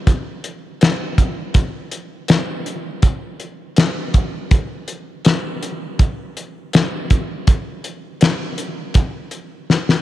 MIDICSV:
0, 0, Header, 1, 2, 480
1, 0, Start_track
1, 0, Tempo, 739827
1, 1010, Time_signature, 4, 2, 24, 8
1, 6500, End_track
2, 0, Start_track
2, 0, Title_t, "Drums"
2, 45, Note_on_c, 9, 42, 81
2, 46, Note_on_c, 9, 36, 98
2, 110, Note_off_c, 9, 42, 0
2, 111, Note_off_c, 9, 36, 0
2, 285, Note_on_c, 9, 42, 58
2, 350, Note_off_c, 9, 42, 0
2, 526, Note_on_c, 9, 42, 82
2, 537, Note_on_c, 9, 38, 101
2, 591, Note_off_c, 9, 42, 0
2, 602, Note_off_c, 9, 38, 0
2, 766, Note_on_c, 9, 36, 75
2, 766, Note_on_c, 9, 42, 63
2, 831, Note_off_c, 9, 36, 0
2, 831, Note_off_c, 9, 42, 0
2, 1001, Note_on_c, 9, 42, 80
2, 1005, Note_on_c, 9, 36, 101
2, 1066, Note_off_c, 9, 42, 0
2, 1069, Note_off_c, 9, 36, 0
2, 1242, Note_on_c, 9, 42, 57
2, 1307, Note_off_c, 9, 42, 0
2, 1481, Note_on_c, 9, 42, 82
2, 1492, Note_on_c, 9, 38, 104
2, 1546, Note_off_c, 9, 42, 0
2, 1557, Note_off_c, 9, 38, 0
2, 1727, Note_on_c, 9, 42, 59
2, 1791, Note_off_c, 9, 42, 0
2, 1962, Note_on_c, 9, 42, 72
2, 1965, Note_on_c, 9, 36, 100
2, 2027, Note_off_c, 9, 42, 0
2, 2030, Note_off_c, 9, 36, 0
2, 2204, Note_on_c, 9, 42, 51
2, 2269, Note_off_c, 9, 42, 0
2, 2442, Note_on_c, 9, 42, 73
2, 2453, Note_on_c, 9, 38, 110
2, 2507, Note_off_c, 9, 42, 0
2, 2518, Note_off_c, 9, 38, 0
2, 2685, Note_on_c, 9, 42, 58
2, 2688, Note_on_c, 9, 36, 79
2, 2750, Note_off_c, 9, 42, 0
2, 2753, Note_off_c, 9, 36, 0
2, 2926, Note_on_c, 9, 42, 75
2, 2928, Note_on_c, 9, 36, 108
2, 2991, Note_off_c, 9, 42, 0
2, 2993, Note_off_c, 9, 36, 0
2, 3164, Note_on_c, 9, 42, 58
2, 3229, Note_off_c, 9, 42, 0
2, 3404, Note_on_c, 9, 42, 79
2, 3415, Note_on_c, 9, 38, 104
2, 3469, Note_off_c, 9, 42, 0
2, 3479, Note_off_c, 9, 38, 0
2, 3650, Note_on_c, 9, 42, 62
2, 3715, Note_off_c, 9, 42, 0
2, 3888, Note_on_c, 9, 42, 79
2, 3890, Note_on_c, 9, 36, 109
2, 3953, Note_off_c, 9, 42, 0
2, 3954, Note_off_c, 9, 36, 0
2, 4131, Note_on_c, 9, 42, 57
2, 4196, Note_off_c, 9, 42, 0
2, 4369, Note_on_c, 9, 42, 81
2, 4379, Note_on_c, 9, 38, 110
2, 4434, Note_off_c, 9, 42, 0
2, 4444, Note_off_c, 9, 38, 0
2, 4608, Note_on_c, 9, 42, 59
2, 4611, Note_on_c, 9, 36, 75
2, 4673, Note_off_c, 9, 42, 0
2, 4676, Note_off_c, 9, 36, 0
2, 4848, Note_on_c, 9, 42, 88
2, 4851, Note_on_c, 9, 36, 100
2, 4913, Note_off_c, 9, 42, 0
2, 4916, Note_off_c, 9, 36, 0
2, 5088, Note_on_c, 9, 42, 56
2, 5152, Note_off_c, 9, 42, 0
2, 5326, Note_on_c, 9, 42, 87
2, 5336, Note_on_c, 9, 38, 100
2, 5391, Note_off_c, 9, 42, 0
2, 5401, Note_off_c, 9, 38, 0
2, 5566, Note_on_c, 9, 42, 65
2, 5631, Note_off_c, 9, 42, 0
2, 5802, Note_on_c, 9, 42, 76
2, 5808, Note_on_c, 9, 36, 99
2, 5867, Note_off_c, 9, 42, 0
2, 5873, Note_off_c, 9, 36, 0
2, 6041, Note_on_c, 9, 42, 54
2, 6106, Note_off_c, 9, 42, 0
2, 6293, Note_on_c, 9, 38, 60
2, 6358, Note_off_c, 9, 38, 0
2, 6417, Note_on_c, 9, 38, 59
2, 6482, Note_off_c, 9, 38, 0
2, 6500, End_track
0, 0, End_of_file